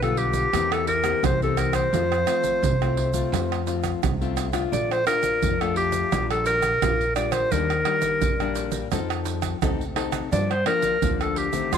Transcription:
Already playing: upright bass B1, nylon-string guitar D3
0.02 nylon-string guitar G3 B3 F4, clarinet A4, pandeiro, tamborim, shaker
0.17 clarinet G4, pandeiro
0.33 pandeiro, shaker, surdo
0.53 upright bass E2, nylon-string guitar E3 A#3 C4 G4, pandeiro, tamborim, shaker, surdo
0.72 clarinet A4, pandeiro, tamborim, shaker
0.87 clarinet A#4, pandeiro, surdo
1.04 nylon-string guitar A#3 C4 G4, pandeiro, tamborim, shaker, surdo
1.23 upright bass C2, nylon-string guitar E3, clarinet C5, pandeiro, tamborim, shaker, surdo
1.42 nylon-string guitar A#3 C4 G4, clarinet A4, pandeiro, shaker
1.57 clarinet A#4, pandeiro, tamborim, shaker
1.73 clarinet C5, pandeiro, tamborim, shaker, surdo
1.93 upright bass F2, nylon-string guitar F3 A3 C4 F4, pandeiro, shaker, surdo
2.12 pandeiro, tamborim, shaker
2.27 nylon-string guitar A3 C4 F4, pandeiro, tamborim, shaker
2.44 pandeiro, shaker, surdo
2.62 upright bass C2, nylon-string guitar C3, pandeiro, shaker, surdo
2.81 nylon-string guitar A3 C4 F4, pandeiro, tamborim, shaker
2.97 pandeiro
3.13 nylon-string guitar A3 C4 F4, pandeiro, shaker, surdo
3.32 upright bass F2, nylon-string guitar F3, pandeiro, tamborim, shaker, surdo
3.52 pandeiro, tamborim, shaker
3.67 nylon-string guitar A3 C4 F4, pandeiro, shaker
3.84 pandeiro, tamborim, shaker, surdo
4.03 upright bass C2, nylon-string guitar C3, pandeiro, tamborim, shaker, surdo
4.21 nylon-string guitar A3 C4 F4, pandeiro, shaker
4.37 pandeiro, tamborim, shaker
4.53 nylon-string guitar A3 D4 F4, pandeiro, tamborim, shaker, surdo
4.72 upright bass A#1, nylon-string guitar A#2, clarinet D5, pandeiro, shaker, surdo
4.91 clarinet C5, pandeiro, tamborim, shaker
5.07 nylon-string guitar D4 F4, clarinet A#4, pandeiro, tamborim, shaker
5.23 pandeiro, shaker, surdo
5.42 upright bass F2, nylon-string guitar F3, pandeiro, shaker, surdo
5.61 nylon-string guitar A3 D4 F4, clarinet A4, pandeiro, tamborim, shaker
5.76 clarinet G4, pandeiro
5.92 pandeiro, shaker, surdo
6.12 upright bass A#1, nylon-string guitar A#2 G3 D4 F4, pandeiro, tamborim, shaker, surdo
6.30 clarinet A4, pandeiro, tamborim, shaker
6.46 clarinet A#4, pandeiro, shaker
6.62 pandeiro, tamborim, shaker, surdo
6.82 upright bass A#1, nylon-string guitar A#2 G3 D4 F4, pandeiro, tamborim, shaker, surdo
7.01 pandeiro, shaker
7.16 nylon-string guitar G3 D4 F4, clarinet D5, pandeiro, tamborim, shaker
7.32 clarinet C5, pandeiro, tamborim, shaker, surdo
7.52 upright bass D#2, nylon-string guitar D#3 G3 A#3 D4, clarinet A#4, pandeiro, shaker, surdo
7.70 pandeiro, tamborim, shaker
7.85 nylon-string guitar G3 A#3 D4, pandeiro, tamborim
8.02 pandeiro, shaker, surdo
8.22 upright bass A#1, nylon-string guitar A#2, pandeiro, shaker, surdo
8.40 nylon-string guitar G3 A#3 D4, pandeiro, tamborim, shaker
8.55 pandeiro, shaker
8.72 pandeiro, shaker, surdo
8.92 upright bass F2, nylon-string guitar F3 C4 D#4 A4, pandeiro, tamborim, shaker, surdo
9.10 pandeiro, tamborim, shaker
9.25 pandeiro, shaker
9.42 pandeiro, tamborim, shaker, surdo
9.62 upright bass D2, nylon-string guitar C3 C4 D#4 A4, pandeiro, tamborim, shaker, surdo
9.81 pandeiro, shaker
9.96 nylon-string guitar C4 D#4 A4, pandeiro, tamborim
10.12 pandeiro, tamborim, shaker, surdo
10.32 upright bass G2, nylon-string guitar G2 F3 A#3 D4, clarinet D5, pandeiro, shaker, surdo
10.51 clarinet C5, pandeiro, tamborim, shaker
10.66 nylon-string guitar F3 A#3 D4, clarinet A#4, pandeiro, tamborim
10.82 pandeiro, shaker, surdo
11.02 upright bass D2, nylon-string guitar D3 F3 A#3 D4, pandeiro, shaker, surdo
11.21 clarinet A4, pandeiro, tamborim, shaker
11.36 clarinet G4, pandeiro
11.52 nylon-string guitar D#3 A3 C4, pandeiro, shaker, surdo
11.72 upright bass F2, nylon-string guitar F2, clarinet F4, pandeiro, tamborim, shaker, surdo

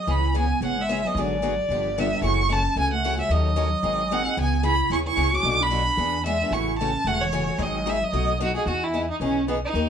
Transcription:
Already playing: clarinet F#3, violin D#5
0.07 upright bass C#2, steel-string acoustic guitar C#3 E3 B3 C#4 G#4, clarinet E4, violin B5
0.34 steel-string acoustic guitar C#3 E3 B3 C#4 G#4, clarinet B3
0.39 violin G#5
0.61 upright bass G#1, steel-string acoustic guitar C#3 E3 B3 C#4 G#4, clarinet B3
0.66 violin F#5
0.77 clarinet G#3
0.81 violin E5
0.89 steel-string acoustic guitar C#3 E3 B3 C#4 G#4
1.04 clarinet F#3, steel-string acoustic guitar B3 C#4 G#4, violin D#5
1.14 upright bass G#1, steel-string acoustic guitar D3 F#3 B3 F#4 G#4, clarinet F#3
1.21 violin D5
1.42 steel-string acoustic guitar D3 F#3 B3 F#4 G#4
1.69 upright bass G1, steel-string acoustic guitar D3 F3 B3 D4 G4
1.96 steel-string acoustic guitar D3 F3 B3 D4 G4, clarinet G3, violin E5
2.13 steel-string acoustic guitar B3 D4 G4
2.22 upright bass F#1, steel-string acoustic guitar C#3 E3 A3 C#4 F#4, clarinet E4, violin C#6
2.49 steel-string acoustic guitar C#3 E3 A3 C#4 F#4, clarinet C#4
2.53 violin A5
2.76 upright bass C#2, steel-string acoustic guitar C#3 E3 A3 C#4 F#4, clarinet C#4, violin G#5
2.93 clarinet A3, violin F#5
3.04 steel-string acoustic guitar C#3 E3 A3 C#4 F#4
3.18 clarinet G#3, steel-string acoustic guitar A3 C#4 F#4, violin E5
3.29 upright bass D#2, steel-string acoustic guitar D#3 F#3 C#4 D#4 A4, clarinet F#3, violin D#5
3.56 steel-string acoustic guitar D#3 F#3 C#4 D#4 A4
3.83 upright bass G#1, steel-string acoustic guitar D#3 F#3 C4 D#4 G#4
4.11 steel-string acoustic guitar D#3 F#3 C4 D#4 G#4, clarinet C4, violin F#5
4.26 steel-string acoustic guitar C4 D#4 G#4
4.37 upright bass C#2, steel-string acoustic guitar C#3 E3 B3 C#4 G#4, clarinet B3, violin G#5
4.63 steel-string acoustic guitar C#3 E3 B3 C#4 G#4, clarinet E4, violin B5
4.90 upright bass D#2, steel-string acoustic guitar C#3 E3 B3 C#4 G#4, clarinet E4, violin C#6
5.06 clarinet E4, violin C#6
5.17 upright bass C#2, steel-string acoustic guitar C#3 E3 B3 C#4 G#4
5.32 steel-string acoustic guitar B3 C#4 G#4, clarinet F#4, violin D6
5.43 upright bass B1, steel-string acoustic guitar B2 F#3 A3 D4 F#4
5.60 clarinet D4, violin B5
5.70 steel-string acoustic guitar B2 F#3 A3 D4 F#4
5.97 upright bass E2, steel-string acoustic guitar E3 B3 D4 G#4
6.26 steel-string acoustic guitar E3 B3 D4 G#4, clarinet G#3, violin E5
6.41 steel-string acoustic guitar B3 D4 G#4
6.51 upright bass A1, steel-string acoustic guitar C#3 E3 A3 C#4 F#4, clarinet E4, violin C#6
6.79 steel-string acoustic guitar C#3 E3 A3 C#4 F#4, clarinet C#4, violin A5
7.04 upright bass E1, steel-string acoustic guitar C#3 E3 A3 C#4 F#4, clarinet A3, violin F#5
7.21 clarinet E3, violin C#5
7.32 steel-string acoustic guitar C#3 E3 A3 C#4 F#4
7.47 steel-string acoustic guitar A3 C#4 F#4
7.58 upright bass G#1, steel-string acoustic guitar D#3 F#3 C4 D#4 G#4, clarinet F#3, violin D#5
7.85 steel-string acoustic guitar D#3 F#3 C4 D#4 G#4, clarinet G#3, violin E5
8.01 clarinet F#3, violin D#5
8.13 upright bass B1, steel-string acoustic guitar B2 F#3 A3 D#4 F#4
8.41 steel-string acoustic guitar B2 F#3 A3 D#4 F#4, violin F#4
8.55 steel-string acoustic guitar A3 D#4 F#4, violin G#4
8.66 upright bass E2, steel-string acoustic guitar E3 B3 D#4 G#4, violin F#4
8.84 violin E4
8.94 steel-string acoustic guitar E3 B3 D#4 G#4
9.11 violin D#4
9.20 upright bass B1, steel-string acoustic guitar E3 B3 D#4 G#4, violin C#4
9.48 steel-string acoustic guitar E3 B3 D#4 G#4, violin B3
9.65 violin D#4
9.74 upright bass D#2, steel-string acoustic guitar D#3 A#3 C#4 G4 A#4

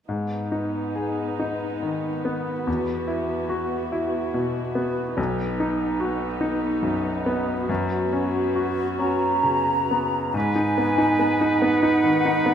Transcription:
0.08 grand piano G#2, viola section B3 D#4
0.52 grand piano D#4
0.95 grand piano G#4
1.39 grand piano D#4
1.83 grand piano D#3
2.25 grand piano B3
2.67 grand piano E2, viola section F#4
3.07 grand piano E4
3.49 grand piano F#4
3.92 grand piano E4
4.34 grand piano B2
4.75 grand piano B3
5.17 grand piano B1, viola section B3 D#4
5.60 grand piano D#4
6.00 grand piano F#4
6.41 grand piano D#4
6.82 grand piano F#2
7.26 grand piano B3
7.69 grand piano F#2, viola section F#4
8.13 grand piano C#4
8.55 grand piano F#4
8.99 grand piano C#4, flute section A#5
9.43 grand piano C#3
9.91 grand piano B3
10.32 grand piano G#2, clarinet D#4, oboe B4, flute section G#5
10.56 grand piano D#4
10.78 grand piano B3
10.98 grand piano D#4
11.19 grand piano B3
11.41 grand piano D#4
11.62 grand piano B3, flute section F#5
11.83 grand piano D#4
12.04 grand piano D#3
12.25 grand piano D#4
12.46 grand piano B3

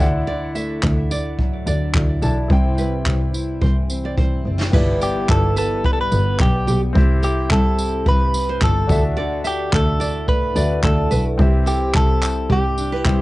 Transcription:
Already playing: steel-string acoustic guitar E3 E4, grand piano E4, nylon-string guitar A4
0.00 double bass D2, steel-string acoustic guitar D3, grand piano D5 E5 F#5
0.27 steel-string acoustic guitar D3 E4, nylon-string guitar D5
0.55 steel-string acoustic guitar A3, nylon-string guitar E5, tambourine
0.83 double bass D2, steel-string acoustic guitar D4, kick, clap
1.11 steel-string acoustic guitar E4, nylon-string guitar D5, tambourine
1.38 steel-string acoustic guitar F#3, kick
1.66 double bass D2, steel-string acoustic guitar D4, nylon-string guitar D5, tambourine
1.94 double bass D2, steel-string acoustic guitar E4, kick, clap
2.22 double bass B1, steel-string acoustic guitar D4, grand piano E4 D5 A5, nylon-string guitar A4, tambourine
2.48 double bass C2, steel-string acoustic guitar C3 E4, grand piano E4 C5, kick
2.52 grand piano G5
2.77 steel-string acoustic guitar G3, nylon-string guitar B4, tambourine
3.05 double bass C2, steel-string acoustic guitar C4, kick, clap
3.33 steel-string acoustic guitar E4, tambourine
3.61 double bass C2, steel-string acoustic guitar E3, nylon-string guitar C5, kick
3.89 steel-string acoustic guitar C4, tambourine
4.05 nylon-string guitar D5
4.17 double bass C2, steel-string acoustic guitar E4, nylon-string guitar C5, kick
4.45 double bass F#1, steel-string acoustic guitar C4
4.61 snare
4.72 double bass G1, steel-string acoustic guitar G2 E4, grand piano B3 E4 G4 D5, nylon-string guitar B4, kick, crash
5.00 steel-string acoustic guitar B3, clean electric guitar G4, nylon-string guitar D5, tambourine
5.28 double bass G1, steel-string acoustic guitar G3, clean electric guitar A4, kick, clap
5.56 steel-string acoustic guitar B3, clean electric guitar A4, nylon-string guitar B4, tambourine
5.84 steel-string acoustic guitar G3, clean electric guitar B4, kick
5.93 clean electric guitar A4
6.01 clean electric guitar B4
6.12 double bass G1, steel-string acoustic guitar B3, nylon-string guitar B4, tambourine
6.39 double bass B1, steel-string acoustic guitar G3, clean electric guitar G4, kick, clap
6.67 double bass B1, steel-string acoustic guitar B3, nylon-string guitar G4, tambourine
6.93 double bass C2, steel-string acoustic guitar C3 G4, grand piano C4 E4 G4, kick
6.97 grand piano E5
7.23 steel-string acoustic guitar E4, clean electric guitar G4, nylon-string guitar A4, tambourine
7.51 double bass C2, steel-string acoustic guitar G3, clean electric guitar A4, kick, clap
7.78 steel-string acoustic guitar E4, tambourine
8.06 double bass C2, steel-string acoustic guitar G3, nylon-string guitar B4, clean electric guitar B4, kick
8.34 steel-string acoustic guitar E4, tambourine
8.49 nylon-string guitar C5
8.61 double bass G1, steel-string acoustic guitar G3, nylon-string guitar A4, clean electric guitar A4, kick, clap
8.87 double bass D2, steel-string acoustic guitar D3, grand piano D4 F#4 A4, kick, tambourine
8.92 grand piano E5
9.17 steel-string acoustic guitar D3 F#4, nylon-string guitar D5
9.44 steel-string acoustic guitar E4, clean electric guitar G4, nylon-string guitar E5, tambourine
9.72 double bass D2, steel-string acoustic guitar A3, clean electric guitar A4, kick, clap
10.00 steel-string acoustic guitar E4, nylon-string guitar D5, tambourine
10.28 steel-string acoustic guitar A3, clean electric guitar B4, kick
10.55 double bass D2, grand piano D4 F#4 A4 E5, steel-string acoustic guitar E4, nylon-string guitar D5, tambourine
10.83 double bass D2, steel-string acoustic guitar A3, clean electric guitar A4, kick, clap
11.11 double bass B1, steel-string acoustic guitar E4, nylon-string guitar B4, tambourine
11.38 double bass C2, steel-string acoustic guitar C3 G4, grand piano C4 E4 G4 E5, kick
11.66 steel-string acoustic guitar E4, clean electric guitar G4, nylon-string guitar A4, tambourine
11.94 double bass C2, steel-string acoustic guitar G3, clean electric guitar A4, kick, clap
12.22 steel-string acoustic guitar E4, clap, tambourine
12.50 double bass C2, steel-string acoustic guitar G3, nylon-string guitar G4, clean electric guitar G4, kick
12.77 steel-string acoustic guitar D4, tambourine
12.92 steel-string acoustic guitar E4, nylon-string guitar B4
13.05 double bass C2, steel-string acoustic guitar G3, grand piano C4 E4 G4 E5, nylon-string guitar C5, kick, clap

